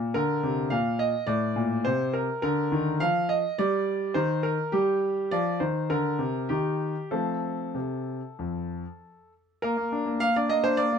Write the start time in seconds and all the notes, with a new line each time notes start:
Already playing: A#2
0.14 D3 A#4
0.43 C3
0.70 A#2 F5
0.99 D#5
1.27 A2 D5
1.56 A#2
1.85 C3 C5
2.13 A#4
2.42 D3 A#4
2.72 D#3
3.00 F3 F5
3.29 D#5
3.58 G3 D5
4.14 D#3 C5
4.43 A#4
4.72 G3 G4
5.31 F3 D5
5.60 D#3 C5
5.90 D3 A#4
6.19 C3
6.49 D#3 G4
7.11 F3 A3 C4 A4
7.75 C3
8.39 F2
9.62 A#3 A#4
9.77 A#3
9.92 D4
10.06 A#3
10.20 A#3 F5
10.36 D4 D5
10.49 A#3 D#5
10.64 D4 C5
10.77 A#3 D5
10.93 A#3